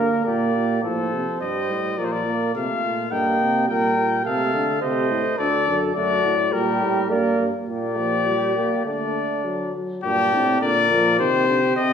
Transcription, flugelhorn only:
0.00 0.27 A#4 medium
0.26 0.83 G4 medium
0.84 1.94 C5 medium
1.98 2.54 A#4 medium
2.55 3.13 F4 medium
3.12 3.68 D#4 medium
3.69 4.24 A#4 medium
4.25 4.81 A4 medium
4.81 5.39 C5 medium
5.38 5.95 A4 medium
5.95 6.36 F#4 medium
6.53 7.09 G4 medium
7.10 7.47 D5 medium
7.69 8.82 G4 medium
8.86 9.72 D4 medium
10.04 10.64 D4 medium
10.62 11.19 A#4 medium
11.20 11.93 G4 medium

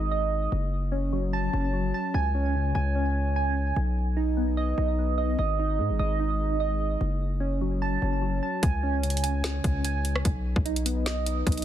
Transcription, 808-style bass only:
0.00 0.48 G#1 loud
0.52 1.49 F#1 loud
1.53 1.92 F#1 loud
2.14 2.73 C#2 loud
2.75 3.72 C#2 loud
3.76 4.74 B1 loud
4.78 5.36 B1 loud
5.39 5.81 G#1 loud
5.79 5.91 G#2 loud
5.90 5.99 G#1 loud
5.99 6.97 G#1 loud
7.01 7.98 F#1 loud
8.02 8.41 F#1 loud
8.63 9.60 C#2 loud
9.64 10.23 C#2 loud
10.25 10.55 B1 loud
10.56 11.43 B1 loud
11.47 11.65 B1 loud

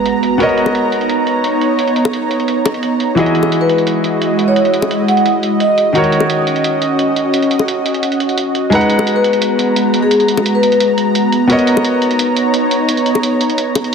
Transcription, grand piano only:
0.00 0.37 G#3 medium
0.00 0.38 D#4 medium
0.00 0.39 B4 medium
0.00 0.40 F#5 medium
0.00 0.38 A#5 medium
0.38 3.14 B3 medium
0.38 3.15 F#4 medium
0.38 3.16 A#4 medium
0.38 3.16 C#5 medium
0.43 3.17 D#5 medium
3.15 5.92 E3 medium
3.15 5.92 E4 medium
3.15 5.93 F#4 medium
3.15 5.94 G#4 medium
3.20 5.94 D#5 medium
5.93 8.69 D#3 medium
5.93 8.70 D#4 medium
5.93 8.70 F#4 medium
5.93 8.71 A#4 medium
5.98 8.72 C#5 medium
8.70 11.47 G#3 medium
8.70 11.47 D#4 medium
8.70 11.48 B4 medium
8.70 11.48 A#5 medium
8.75 11.49 F#5 medium
11.47 13.95 B3 medium
11.47 13.95 F#4 medium
11.47 13.95 A#4 medium
11.47 13.95 C#5 medium
11.52 13.95 D#5 medium

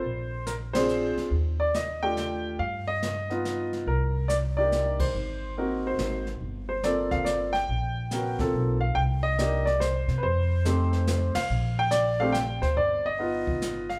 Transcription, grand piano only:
0.00 0.49 C5 medium
0.47 0.53 A#4 medium
0.73 1.29 C4 medium
0.73 1.29 D4 medium
0.73 1.29 F4 medium
0.73 1.30 G#4 medium
0.73 1.14 C5 medium
1.60 1.75 D5 medium
1.75 2.01 D#5 medium
2.02 2.56 A3 medium
2.02 2.57 D4 medium
2.02 2.57 F4 medium
2.02 2.57 G4 medium
2.02 2.55 G5 loud
2.59 2.88 F5 medium
2.88 3.68 D#5 medium
3.30 3.84 B3 medium
3.30 3.85 D#4 medium
3.30 3.85 F4 medium
3.88 4.31 A#4 medium
4.28 4.35 D5 medium
4.57 5.11 A#3 medium
4.57 5.12 D4 medium
4.57 5.12 D#4 medium
4.57 5.12 G4 medium
4.57 5.01 D5 medium
5.00 5.53 C5 medium
5.57 6.22 A#3 medium
5.57 6.22 C4 medium
5.57 6.22 D#4 medium
5.57 6.23 F#4 medium
5.57 5.86 A#4 medium
5.87 6.25 C5 medium
6.69 6.84 C5 medium
6.84 7.49 A#3 medium
6.84 7.49 C4 medium
6.84 7.49 F4 soft
6.84 7.49 A4 medium
6.84 7.13 D5 medium
7.11 7.25 F5 medium
7.25 7.54 D5 medium
7.53 8.34 G5 loud
8.12 8.37 B3 medium
8.12 8.37 C#4 soft
8.12 8.37 F#4 medium
8.12 8.37 A#4 medium
8.39 8.76 A#3 medium
8.39 8.76 C4 soft
8.39 8.77 F4 soft
8.39 8.77 A4 medium
8.81 8.96 F5 medium
8.95 9.01 G5 medium
9.23 9.67 D#5 loud
9.38 9.63 A#3 medium
9.38 9.64 D4 medium
9.38 9.64 D#4 soft
9.38 9.64 G4 medium
9.66 9.81 D5 medium
9.80 10.19 C5 medium
10.18 10.23 B4 medium
10.23 11.39 C5 medium
10.65 11.30 A3 medium
10.65 11.30 C4 medium
10.65 11.30 D#4 soft
10.65 11.31 G4 medium
11.35 11.79 F5 medium
11.79 11.93 G5 loud
11.91 12.18 D5 medium
12.20 12.33 A3 medium
12.20 12.34 C4 medium
12.20 12.34 D4 medium
12.20 12.34 G4 medium
12.20 12.35 F5 medium
12.32 12.62 G5 medium
12.62 12.76 C5 medium
12.77 13.06 D5 medium
13.06 13.93 D#5 medium
13.19 13.84 B3 medium
13.19 13.84 D#4 medium
13.19 13.85 F4 medium
13.89 13.99 F5 medium

